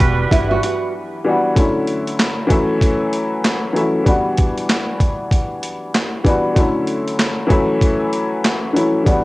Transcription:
Already playing: E3 G3 B3 D4 F#4 B4
0.00 E1, kick, closed hi-hat
0.31 G1 E4, kick, closed hi-hat
0.51 F#4
0.63 F#4, closed hi-hat
1.24 E3 G3 B3 D4
1.29 F#4
1.54 D3 F#3 A3 C#4, kick, closed hi-hat
1.59 E4
1.87 closed hi-hat
2.07 closed hi-hat
2.20 snare, clap, closed hi-hat
2.47 E3 F#3 A3 C#4, kick, closed hi-hat
2.51 E4
2.81 kick, closed hi-hat
3.13 closed hi-hat
3.44 snare, clap, closed hi-hat
3.73 E3 F#3 A3 C#4, closed hi-hat
3.78 E4
4.04 E3 G3 B3 D4, kick, closed hi-hat
4.08 F#4
4.37 kick, closed hi-hat
4.58 closed hi-hat
4.70 snare, clap, closed hi-hat
5.00 kick, closed hi-hat
5.31 kick, closed hi-hat
5.63 closed hi-hat
5.94 snare, clap, closed hi-hat
6.24 E3 G3 B3 D4, kick, closed hi-hat
6.29 F#4
6.55 D3 F#3 A3 C#4, kick, closed hi-hat
6.59 E4
6.87 closed hi-hat
7.08 closed hi-hat
7.19 snare, clap, closed hi-hat
7.47 E3 F#3 A3 C#4, kick, closed hi-hat
7.51 E4
7.81 kick, closed hi-hat
8.13 closed hi-hat
8.44 snare, clap, closed hi-hat
8.73 E3 F#3 A3 C#4, closed hi-hat
8.78 E4
9.04 E3 G3 B3 D4, kick, closed hi-hat
9.09 F#4

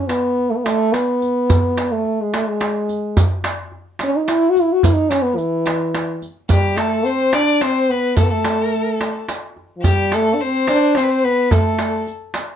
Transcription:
0.00 C#4
0.08 B3, riq, darbuka tek
0.38 darbuka ka
0.51 A3
0.56 B3
0.65 A3, riq, darbuka tek
0.93 B3, riq, darbuka tek
1.22 riq, darbuka ka
1.50 riq, darbuka dum
1.77 riq, darbuka tek
1.92 A3
2.05 darbuka ka
2.21 G#3
2.34 A3, riq, darbuka tek
2.48 G#3
2.60 riq, darbuka tek
2.89 riq, darbuka ka
3.17 riq, darbuka dum
3.44 riq, darbuka tek
3.72 darbuka ka
3.99 riq, darbuka tek
4.04 C#4
4.16 D#4
4.23 D#4
4.28 E4, riq, darbuka tek
4.50 F#4
4.55 riq, darbuka ka
4.62 E4
4.73 F#4
4.83 E4, riq, darbuka dum
4.93 D#4
5.10 C#4, riq, darbuka tek
5.22 B3
5.36 E3, riq, darbuka ka
5.66 riq, darbuka tek
5.95 riq, darbuka tek
6.22 riq, darbuka ka
6.49 G3 G4, riq, darbuka dum
6.76 A3 A4, riq, darbuka tek
7.06 C4 C5, riq
7.33 D4 D5, riq, darbuka tek
7.61 C4 C5, riq, darbuka tek
7.89 B3 B4, darbuka ka
8.17 A3 A4, riq, darbuka dum
8.23 B3
8.30 A3 A4
8.45 riq, darbuka tek
8.74 riq
9.01 riq, darbuka tek
9.29 riq, darbuka tek
9.57 darbuka ka
9.77 F3
9.83 G3 G4, riq, darbuka dum
10.12 A3 A4, riq, darbuka tek
10.35 D4
10.41 C4 C5, riq
10.68 D4, riq, darbuka tek
10.95 C4 C5, riq, darbuka tek
11.03 B4
11.10 C5
11.24 B3 B4, darbuka ka
11.51 A3 A4, riq, darbuka dum
11.79 riq, darbuka tek
12.07 riq, darbuka ka
12.34 riq, darbuka tek

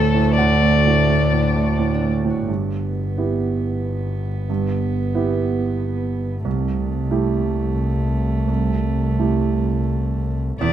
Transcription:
Already playing: D2 A2 A3 D4 F#4 A4 D5 A5 B5 C6
0.14 A2
0.19 F#4
0.36 D2 D4 D5 F#5
0.54 A4
0.62 A3
0.72 F#4
0.86 A2 D4
1.07 A3 F#4
1.25 D5
1.32 A2
1.42 D4
1.56 A3
1.60 F#4
1.77 A2 D5
1.94 D4
2.02 A3
2.25 A2
2.30 F#4
2.48 G1 G2 B3
3.18 B3 E4 G4
4.50 G2
5.15 B3 E4 G4
6.45 C2 A3
7.11 A3 E4 G4
8.48 C2
9.19 A3 E4 G4
10.61 E1 E2 G3 E4 D5

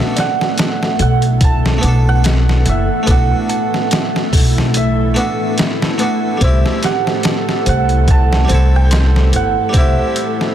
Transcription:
Already playing: E3 A3 B3 D4 E4 F#4 A4 E5
0.00 snare
0.16 D5 F#5, snare, closed hi-hat
0.41 snare
0.58 snare, closed hi-hat
0.83 snare
0.99 B1 A4 F#5, closed hi-hat
1.22 closed hi-hat
1.41 A5, kick, closed hi-hat
1.66 snare
1.78 A3 B3
1.83 B1 D4, closed hi-hat
1.88 A4
2.09 F#5
2.24 F#5, snare, closed hi-hat
2.49 snare
2.66 F#1 E5, closed hi-hat
3.03 A3 B3 A4
3.07 B1 D4 F#5, kick, closed hi-hat
3.13 F#4
3.49 A5, closed hi-hat
3.74 snare
3.91 snare, closed hi-hat
4.16 snare
4.33 B1 A4, kick, open hi-hat
4.58 snare
4.74 E5, closed hi-hat
5.14 A3 B3 D4, closed hi-hat
5.19 F#4
5.58 snare, closed hi-hat
5.82 snare
5.98 A3 B3 D4, closed hi-hat
6.03 F#4
6.38 C2 G3 C4, kick, closed hi-hat
6.42 E4 C5 E5
6.47 G4
6.66 snare
6.83 G4 F#5, snare, closed hi-hat
7.07 snare
7.23 snare, closed hi-hat
7.49 snare
7.66 C2 C5 F#5, closed hi-hat
7.89 closed hi-hat
8.08 A5, kick, closed hi-hat
8.33 snare
8.45 G3 C4
8.49 C2 E4, closed hi-hat
8.54 A4
8.76 G5
8.91 C6, snare, closed hi-hat
9.16 snare
9.33 G1 F#5, closed hi-hat
9.69 G3 C4
9.74 C2 E4 C5 E5, kick, closed hi-hat
9.80 G4
10.16 E6, closed hi-hat
10.41 snare

